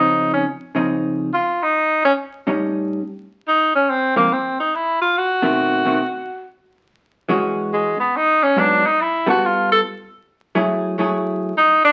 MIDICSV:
0, 0, Header, 1, 3, 480
1, 0, Start_track
1, 0, Tempo, 426439
1, 34, Time_signature, 4, 2, 24, 8
1, 13418, End_track
2, 0, Start_track
2, 0, Title_t, "Tenor saxophone"
2, 0, Program_c, 0, 66
2, 0, Note_on_c, 0, 63, 68
2, 339, Note_off_c, 0, 63, 0
2, 377, Note_on_c, 0, 61, 59
2, 516, Note_off_c, 0, 61, 0
2, 1505, Note_on_c, 0, 65, 74
2, 1828, Note_on_c, 0, 63, 79
2, 1845, Note_off_c, 0, 65, 0
2, 2292, Note_off_c, 0, 63, 0
2, 2304, Note_on_c, 0, 61, 79
2, 2393, Note_off_c, 0, 61, 0
2, 3913, Note_on_c, 0, 63, 67
2, 4193, Note_off_c, 0, 63, 0
2, 4222, Note_on_c, 0, 61, 62
2, 4386, Note_on_c, 0, 60, 67
2, 4403, Note_off_c, 0, 61, 0
2, 4685, Note_off_c, 0, 60, 0
2, 4692, Note_on_c, 0, 58, 73
2, 4871, Note_on_c, 0, 60, 66
2, 4888, Note_off_c, 0, 58, 0
2, 5171, Note_off_c, 0, 60, 0
2, 5178, Note_on_c, 0, 63, 65
2, 5347, Note_on_c, 0, 64, 75
2, 5364, Note_off_c, 0, 63, 0
2, 5636, Note_off_c, 0, 64, 0
2, 5643, Note_on_c, 0, 65, 76
2, 5828, Note_on_c, 0, 66, 76
2, 5845, Note_off_c, 0, 65, 0
2, 7254, Note_off_c, 0, 66, 0
2, 8703, Note_on_c, 0, 56, 64
2, 8989, Note_off_c, 0, 56, 0
2, 9001, Note_on_c, 0, 59, 69
2, 9191, Note_on_c, 0, 63, 76
2, 9208, Note_off_c, 0, 59, 0
2, 9491, Note_on_c, 0, 61, 77
2, 9507, Note_off_c, 0, 63, 0
2, 9667, Note_on_c, 0, 62, 72
2, 9684, Note_off_c, 0, 61, 0
2, 9974, Note_on_c, 0, 63, 72
2, 9991, Note_off_c, 0, 62, 0
2, 10144, Note_on_c, 0, 64, 71
2, 10161, Note_off_c, 0, 63, 0
2, 10450, Note_off_c, 0, 64, 0
2, 10466, Note_on_c, 0, 66, 87
2, 10642, Note_on_c, 0, 65, 77
2, 10659, Note_off_c, 0, 66, 0
2, 10932, Note_off_c, 0, 65, 0
2, 10939, Note_on_c, 0, 69, 77
2, 11030, Note_off_c, 0, 69, 0
2, 13026, Note_on_c, 0, 63, 80
2, 13310, Note_off_c, 0, 63, 0
2, 13333, Note_on_c, 0, 62, 92
2, 13418, Note_off_c, 0, 62, 0
2, 13418, End_track
3, 0, Start_track
3, 0, Title_t, "Hollow-body jazz guitar"
3, 0, Program_c, 1, 26
3, 0, Note_on_c, 1, 49, 50
3, 0, Note_on_c, 1, 53, 53
3, 0, Note_on_c, 1, 60, 57
3, 0, Note_on_c, 1, 63, 62
3, 486, Note_off_c, 1, 49, 0
3, 490, Note_off_c, 1, 53, 0
3, 493, Note_off_c, 1, 60, 0
3, 495, Note_off_c, 1, 63, 0
3, 841, Note_on_c, 1, 49, 49
3, 849, Note_on_c, 1, 53, 47
3, 853, Note_on_c, 1, 60, 51
3, 853, Note_on_c, 1, 63, 54
3, 1448, Note_off_c, 1, 49, 0
3, 1451, Note_off_c, 1, 53, 0
3, 1453, Note_off_c, 1, 60, 0
3, 1453, Note_off_c, 1, 63, 0
3, 2777, Note_on_c, 1, 45, 51
3, 2780, Note_on_c, 1, 55, 52
3, 2782, Note_on_c, 1, 61, 53
3, 2786, Note_on_c, 1, 63, 51
3, 3376, Note_off_c, 1, 45, 0
3, 3378, Note_off_c, 1, 55, 0
3, 3379, Note_off_c, 1, 61, 0
3, 3381, Note_off_c, 1, 63, 0
3, 4685, Note_on_c, 1, 44, 49
3, 4685, Note_on_c, 1, 58, 55
3, 4687, Note_on_c, 1, 53, 50
3, 4693, Note_on_c, 1, 60, 54
3, 4827, Note_off_c, 1, 44, 0
3, 4827, Note_off_c, 1, 58, 0
3, 4828, Note_off_c, 1, 53, 0
3, 4831, Note_off_c, 1, 60, 0
3, 6104, Note_on_c, 1, 47, 55
3, 6109, Note_on_c, 1, 51, 51
3, 6112, Note_on_c, 1, 60, 56
3, 6113, Note_on_c, 1, 57, 57
3, 6559, Note_off_c, 1, 47, 0
3, 6562, Note_off_c, 1, 51, 0
3, 6564, Note_off_c, 1, 57, 0
3, 6564, Note_off_c, 1, 60, 0
3, 6585, Note_on_c, 1, 47, 46
3, 6588, Note_on_c, 1, 51, 50
3, 6591, Note_on_c, 1, 57, 51
3, 6599, Note_on_c, 1, 60, 53
3, 6738, Note_off_c, 1, 47, 0
3, 6739, Note_off_c, 1, 51, 0
3, 6740, Note_off_c, 1, 57, 0
3, 6744, Note_off_c, 1, 60, 0
3, 8201, Note_on_c, 1, 52, 50
3, 8209, Note_on_c, 1, 56, 59
3, 8210, Note_on_c, 1, 61, 56
3, 8214, Note_on_c, 1, 66, 61
3, 8935, Note_off_c, 1, 52, 0
3, 8940, Note_off_c, 1, 56, 0
3, 8940, Note_off_c, 1, 61, 0
3, 8942, Note_off_c, 1, 66, 0
3, 9640, Note_on_c, 1, 44, 57
3, 9651, Note_on_c, 1, 54, 56
3, 9656, Note_on_c, 1, 59, 55
3, 9659, Note_on_c, 1, 62, 59
3, 9926, Note_off_c, 1, 44, 0
3, 9932, Note_off_c, 1, 54, 0
3, 9934, Note_off_c, 1, 59, 0
3, 9936, Note_off_c, 1, 62, 0
3, 10427, Note_on_c, 1, 55, 48
3, 10436, Note_on_c, 1, 59, 55
3, 10438, Note_on_c, 1, 65, 55
3, 10449, Note_on_c, 1, 69, 58
3, 11042, Note_off_c, 1, 55, 0
3, 11046, Note_off_c, 1, 59, 0
3, 11047, Note_off_c, 1, 65, 0
3, 11053, Note_off_c, 1, 69, 0
3, 11877, Note_on_c, 1, 54, 71
3, 11879, Note_on_c, 1, 64, 67
3, 11880, Note_on_c, 1, 57, 64
3, 11888, Note_on_c, 1, 68, 67
3, 12325, Note_off_c, 1, 54, 0
3, 12326, Note_off_c, 1, 64, 0
3, 12327, Note_off_c, 1, 57, 0
3, 12331, Note_off_c, 1, 68, 0
3, 12359, Note_on_c, 1, 54, 61
3, 12368, Note_on_c, 1, 57, 69
3, 12372, Note_on_c, 1, 64, 70
3, 12378, Note_on_c, 1, 68, 64
3, 12967, Note_off_c, 1, 54, 0
3, 12971, Note_off_c, 1, 57, 0
3, 12974, Note_off_c, 1, 64, 0
3, 12977, Note_off_c, 1, 68, 0
3, 13418, End_track
0, 0, End_of_file